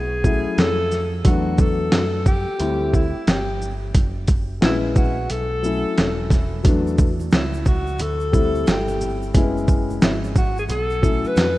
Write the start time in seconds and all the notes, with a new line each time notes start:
Already playing: B1 G#4
0.23 F#3 A3 C#4 E4, kick, shaker
0.46 muted picked electric bass stroke
0.58 F2 A4, snare, closed hi-hat
0.91 snare, shaker
1.24 E2 F#3 A3 B3 D4 F#4, kick, closed hi-hat
1.58 A4, kick, shaker
1.92 F#2, snare, closed hi-hat
2.26 G4, kick, shaker
2.48 muted picked electric bass stroke
2.59 D2 G3 A3 C4 E4, closed hi-hat
2.94 E4, kick, shaker
3.27 G1 G4, snare, closed hi-hat
3.62 shaker
3.95 F#1, kick, closed hi-hat
4.28 kick, closed hi-hat, shaker
4.61 A#1 G#3 B3 C#4 E4, snare, closed hi-hat
4.96 F#4, kick, shaker
5.30 B1 A4, closed hi-hat
5.63 F#3 A3 C#4 E4, shaker
5.98 E1, snare, closed hi-hat
6.30 kick, snare, closed hi-hat, shaker
6.64 E2 F#3 A3 B3 D4, kick, closed hi-hat, shaker
6.87 shaker
6.98 kick, shaker
7.20 high conga, shaker
7.31 C#2 E4, snare, closed hi-hat, shaker
7.54 shaker
7.65 F#4, kick, low conga, shaker
7.87 shaker
7.99 D2 A4, closed hi-hat, low conga, shaker
8.20 shaker
8.32 G3 A3 C4 E4, kick, shaker
8.55 high conga, shaker
8.67 G1 G4, snare, closed hi-hat, shaker
8.88 high conga, shaker
9.01 low conga, shaker
9.22 shaker
9.34 F#1 G#3 B3 C#4 E4, kick, closed hi-hat, shaker
9.57 shaker
9.68 kick, shaker
9.70 shaker
9.90 high conga, shaker
10.02 G#1 E4, snare, closed hi-hat, shaker
10.24 shaker
10.36 F#4, kick, low conga, shaker
10.57 G#4, shaker
10.69 B1 A4, closed hi-hat, low conga, shaker
10.90 shaker
11.02 F#3 A3 C#4 E4, kick, shaker
11.24 B4, muted picked electric bass stroke, high conga, shaker
11.36 F2, snare, closed hi-hat, shaker